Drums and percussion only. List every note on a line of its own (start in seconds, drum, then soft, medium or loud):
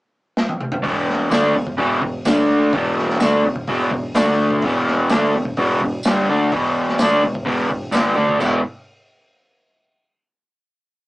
0.37 snare medium
0.49 high tom medium
0.61 mid tom medium
0.72 floor tom loud
0.84 kick loud
0.84 open hi-hat medium
1.10 snare soft
1.31 snare loud
1.31 open hi-hat medium
1.31 tambourine loud
1.67 kick medium
1.78 kick medium
1.78 open hi-hat medium
2.02 kick medium
2.25 snare loud
2.25 open hi-hat medium
2.25 tambourine loud
2.73 kick loud
2.73 open hi-hat medium
2.98 snare soft
3.10 snare soft
3.20 snare loud
3.20 open hi-hat medium
3.20 tambourine loud
3.56 kick loud
3.67 kick loud
3.67 open hi-hat medium
3.91 kick medium
4.14 snare loud
4.14 open hi-hat medium
4.14 tambourine loud
4.51 kick medium
4.62 kick medium
4.62 open hi-hat medium
4.87 snare soft
5.09 snare loud
5.09 open hi-hat medium
5.09 tambourine loud
5.45 kick medium
5.57 kick loud
5.57 open hi-hat medium
5.81 kick medium
6.03 snare loud
6.03 open hi-hat medium
6.03 tambourine loud
6.52 kick loud
6.52 open hi-hat medium
6.89 snare soft
6.98 snare loud
6.98 open hi-hat medium
6.98 tambourine loud
7.35 kick medium
7.47 kick loud
7.47 open hi-hat medium
7.71 kick medium
7.92 snare loud
7.92 open hi-hat medium
7.92 tambourine loud
8.29 kick medium
8.40 kick loud
8.40 crash medium
8.40 tambourine medium